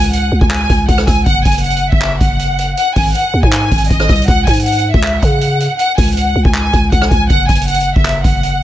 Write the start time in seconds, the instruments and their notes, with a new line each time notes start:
Already playing: 808-style bass C#2
0.04 closed hi-hat
0.08 closed hi-hat
0.13 violin section F#5, closed hi-hat
0.32 808-style bass C#2
0.41 808-style bass C#2, violin section G#5, kick
0.51 violin section G#5, clap, closed hi-hat
0.70 808-style bass C#2, kick, closed hi-hat
0.88 808-style bass C#2, violin section F#5, kick, closed hi-hat
0.98 cross-stick
1.07 808-style bass C#2, violin section G#5, kick, cross-stick, closed hi-hat
1.26 808-style bass F#1, violin section F#5, kick, closed hi-hat
1.45 808-style bass F#1, violin section G#5, kick, closed hi-hat
1.51 closed hi-hat
1.58 closed hi-hat
1.64 violin section F#5, closed hi-hat
1.70 closed hi-hat
1.77 closed hi-hat
1.92 808-style bass F#1, violin section E5, kick
2.02 clap, closed hi-hat
2.21 808-style bass F#1, violin section F#5, kick, closed hi-hat
2.39 closed hi-hat
2.59 closed hi-hat
2.77 violin section F#5, closed hi-hat
2.96 808-style bass G#1, violin section G#5, kick, open hi-hat
3.15 violin section F#5, closed hi-hat
3.34 808-style bass D#2
3.43 808-style bass G#2, violin section G#5, kick
3.53 violin section G#5, clap, closed hi-hat
3.71 808-style bass G#1, kick, closed hi-hat
3.78 closed hi-hat
3.84 closed hi-hat
3.90 808-style bass G#1, violin section D#5, kick, closed hi-hat
4.00 cross-stick
4.09 808-style bass C2, kick, cross-stick, closed hi-hat
4.15 closed hi-hat
4.22 closed hi-hat
4.28 808-style bass C#2, violin section F#5, kick, closed hi-hat
4.47 808-style bass G#2, violin section G#5, kick, closed hi-hat
4.53 closed hi-hat
4.60 closed hi-hat
4.66 violin section F#5, closed hi-hat
4.72 closed hi-hat
4.78 closed hi-hat
4.94 808-style bass C#2, violin section E5, kick
5.03 clap, closed hi-hat
5.22 808-style bass C#3, violin section F#5, kick, closed hi-hat
5.41 closed hi-hat
5.60 closed hi-hat
5.79 violin section F#5, closed hi-hat
5.98 808-style bass C#2, violin section G#5, kick, closed hi-hat
6.03 closed hi-hat
6.07 closed hi-hat
6.12 closed hi-hat
6.17 violin section F#5, closed hi-hat
6.36 808-style bass C#2
6.45 808-style bass C#2, violin section G#5, kick
6.54 violin section G#5, clap, closed hi-hat
6.73 808-style bass C#2, kick, closed hi-hat
6.92 808-style bass C#2, violin section F#5, kick, closed hi-hat
7.02 cross-stick
7.11 808-style bass C#2, violin section G#5, kick, closed hi-hat
7.30 808-style bass F#1, violin section F#5, kick, closed hi-hat
7.49 808-style bass F#1, violin section G#5, kick, closed hi-hat
7.55 closed hi-hat
7.61 closed hi-hat
7.68 violin section F#5, closed hi-hat
7.74 closed hi-hat
7.80 closed hi-hat
7.96 808-style bass F#1, violin section E5, kick
8.05 clap, closed hi-hat
8.24 808-style bass F#1, violin section F#5, kick, closed hi-hat
8.43 closed hi-hat